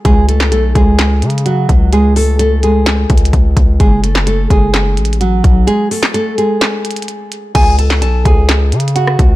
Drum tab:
CC |------------------------------------------------------------------------------------------------|------------------------------------------------------------------------------------------------|------------------------------------------------------------------------------------------------|------------------------------------------------------------------------------------------------|
HH |x-----------x-----------x-----------x-----------x-----------x---x---x---x-----------x-----------|x-----------o-----------x-----------x-----------x-----------x---x---x---x-----------x-----------|x-----------x-----------x-----------x-----------x-----------x---x---x---x-----------x-----------|x-----------o-----------x-----------x-----------x-----------x--x--x--x--x-----------x-----------|
CP |------------------x-----------------------------x-----------------------------------------------|------------------------------------------------x-----------------------------------------------|------------------x-----------------------------x-----------------------------------------------|------------------x-----------------------------x-----------------------------------------------|
SD |------------------o-----------------------------o-----------------------------------------------|------------------------------------------------o-----------------------------------------------|------------------o-----------------------------o-----------------------------------------------|------------------o-----------------------------o-----------------------------------------------|
BD |o-----------------------------------o-----------------------------------------------o-----------|------------------------------------------------------------o-----------o-----------o-----------|o-----------------------------------o-----------------------------------------------o-----------|------------------------------------------------------------------------------------------------|

CC |x-----------------------------------------------------------------------------------------------|
HH |x-----------x-----------x-----------x-----------x-----------x---x---x---x-----------x-----------|
CP |------------------x-----------------------------x-----------------------------------------------|
SD |------------------o-----------------------------o-----------------------------r-----------------|
BD |o-----------------------------------o-----------------------------------------------o-----------|